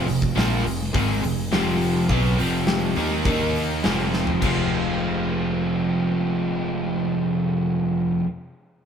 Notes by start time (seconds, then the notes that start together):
Already playing: C4 F4 G#4
0.07 F1 F2 C3, open hi-hat
0.22 kick
0.35 A#1 A#2 F3 A#3 C4 F4 G#4, snare, open hi-hat
0.64 F1 F2 C3, open hi-hat
0.93 G#1 G#2 D#3 G#3 C4 F4 G#4, kick, open hi-hat
1.23 F1 F2 C3, open hi-hat
1.51 F1 F2 C3 F3 C4 F4 G4, snare, open hi-hat
1.81 open hi-hat
2.08 B1 B2 F#3 B3 C4 F4 G#4, kick, open hi-hat
2.39 F1 F2 C3 F3, open hi-hat
2.67 C4 F4 G4, snare, open hi-hat
2.96 D#2 D#3 A#3 D#4, open hi-hat
3.24 D#2 D#3 A#3 D#4 A#4, kick, open hi-hat
3.55 open hi-hat
3.84 F1 F2 C3 F3 C4 F4 G#4, snare, open hi-hat
4.13 snare
4.27 floor tom
4.40 F1 F2 C3 F3 C4 F4, kick, crash
4.44 G#3 C4 F4 G#4